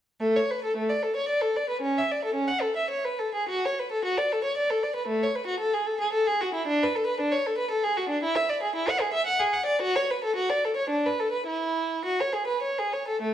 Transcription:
violin
0.20 A3
0.37 C#5
0.51 B4
0.64 A4
0.77 A3
0.89 D5
1.03 A4
1.17 C#5
1.29 D5
1.41 A4
1.56 D5
1.70 B4
1.82 C#4
1.98 E5
2.12 D5
2.25 A4
2.35 C#4
2.48 F#5
2.61 A4
2.77 E5
2.90 C#5
3.05 B4
3.19 A4
3.35 G#4
3.49 F#4
3.66 C#5
3.79 B4
3.92 A4
4.05 F#4
4.18 D5
4.33 A4
4.44 C#5
4.57 D5
4.70 A4
4.83 D5
4.96 B4
5.08 A3
5.23 C#5
5.36 B4
5.47 F#4
5.60 A4
5.73 G#4
5.87 A4
6.01 G#4
6.13 A4
6.27 G#4
6.41 F#4
6.54 E4
6.67 D4
6.83 B4
6.95 A4
7.06 B4
7.20 D4
7.32 C#5
7.46 A4
7.58 B4
7.71 A4
7.84 G#4
7.97 F#4
8.09 D4
8.23 E4
8.36 E5
8.50 D5
8.63 G#4
8.75 E4
8.89 F#5
9.01 G#4
9.13 E5
9.26 F#5
9.40 G#4
9.53 F#5
9.66 D5
9.82 F#4
9.96 C#5
10.11 B4
10.24 A4
10.36 F#4
10.50 D5
10.64 A4
10.77 C#5
10.90 D4
11.06 B4
11.20 A4
11.32 B4
11.47 E4
12.06 F#4
12.20 C#5
12.33 G#4
12.47 B4
12.63 C#5
12.79 G#4
12.93 C#5
13.08 A4
13.21 A3

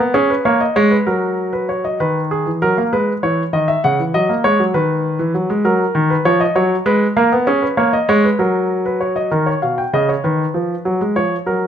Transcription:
grand piano
0.00 B3
0.14 C#4 G#4
0.30 B4
0.45 A#3 C#5
0.61 D#5
0.76 G#3 C#5
0.91 B4
1.06 F#3 A#4
1.53 B4
1.69 C#5
1.84 D#5
2.00 D#3 B4
2.31 G#4
2.46 E3
2.62 F#3 A#4
2.78 A#3
2.93 G#3 B4
3.23 E3 C#5
3.53 D#3 D#5
3.68 E5
3.84 C#3 F#5
4.00 E3
4.14 F#3 D#5
4.29 A#3
4.44 G#3 C#5
4.59 F#3
4.74 D#3 B4
5.19 E3
5.34 F#3
5.50 G#3
5.65 F#3 A#4
5.95 D#3
6.10 B4
6.25 F3 C#5
6.40 D#5
6.55 F#3 C#5
6.86 G#3 B4
7.17 A#3 A#4
7.32 B3
7.47 C#4 G#4
7.62 B4
7.77 A#3 C#5
7.93 D#5
8.09 G#3 C#5
8.25 B4
8.39 F#3 A#4
8.86 B4
9.01 C#5
9.16 D#5
9.31 D#3 A#4
9.46 C#5
9.62 B2 F5
9.78 G5
9.93 C#3 D#5
10.09 C#5
10.24 D#3 B4
10.54 F3
10.85 F#3
11.01 G#3
11.16 F3 C#5
11.46 F#3 A#4

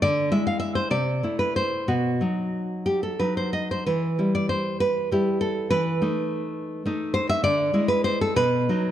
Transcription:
nylon-string guitar
0.02 D3 D5
0.32 G#3 E4 E5
0.47 F5
0.60 E5
0.75 C5
0.91 C3 D5
1.23 A3 E4
1.39 B4
1.56 C5
1.88 B2 F#4
2.21 F#3 D#4
2.86 G4
3.03 A4
3.19 F#3 D#4 B4
3.37 C5
3.53 D#5
3.71 C5
3.86 E3 B4
4.19 G3 E4
4.35 D5
4.49 C5
4.80 B4
5.11 G3 E4 G4
5.41 A4
5.70 E3 B4
6.02 A3 D#4
6.86 A3 D#4
7.14 C5
7.29 E5
7.44 D3 D5
7.74 G#3 E4
7.88 B4
8.04 C5
8.21 A4
8.36 B2 B4
8.69 F#3 D#4

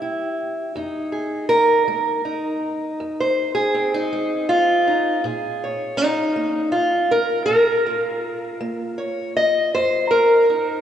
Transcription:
steel-string acoustic guitar
Already playing: G3 G4
0.02 E4
0.76 F2 D#4
1.12 G#4
1.49 A#4
1.88 G#3
2.25 D#4
3.00 F2
3.20 C5
3.55 G#4
3.74 C4
3.94 D#4
4.13 G#3
4.49 F4
4.88 D#4
5.24 A#2 G#4
5.64 C#5
5.97 D#4
6.36 A#3
6.72 F4
7.11 A#4
7.46 A#2 A#4
7.87 F4
8.61 A#3
8.98 C#5
9.37 D#5
9.75 F2 C5
10.11 A#4
10.50 D#4

